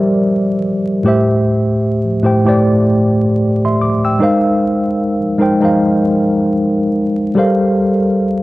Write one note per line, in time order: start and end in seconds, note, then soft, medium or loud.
0.00 1.07 G3 medium
0.00 1.06 G4 medium
0.00 1.07 A#4 medium
0.00 1.07 C5 medium
0.00 1.06 D5 medium
0.00 1.07 E5 medium
1.04 2.02 A2 medium
1.04 2.03 A3 medium
1.04 2.03 G4 medium
1.04 2.04 C5 medium
1.08 2.04 E5 medium
2.22 2.41 A2 medium
2.22 2.42 A3 medium
2.22 2.42 G4 medium
2.22 2.43 C5 medium
2.22 2.43 G5 medium
2.45 3.71 A2 medium
2.45 3.72 A3 medium
2.45 3.72 G4 medium
2.45 3.73 C5 medium
2.45 3.73 D5 medium
3.65 3.81 E5 medium
3.65 3.81 C6 medium
3.81 4.03 D6 medium
4.05 4.42 G5 medium
4.05 4.42 E6 medium
4.19 5.18 G#3 medium
4.19 5.18 D#4 medium
4.19 5.19 A#4 medium
4.19 5.20 C5 medium
4.23 5.20 F5 loud
5.38 5.57 G#3 medium
5.38 5.57 D#4 medium
5.38 5.58 A#4 medium
5.38 5.58 C5 medium
5.42 5.59 G5 medium
5.60 6.87 G#3 medium
5.60 6.88 D#4 medium
5.60 6.88 A#4 medium
5.60 6.89 C5 medium
5.65 6.89 F5 medium
7.35 8.34 G3 medium
7.35 8.34 G4 medium
7.35 8.35 A4 medium
7.35 8.35 A#4 medium
7.35 8.35 C5 medium
7.39 8.36 F5 medium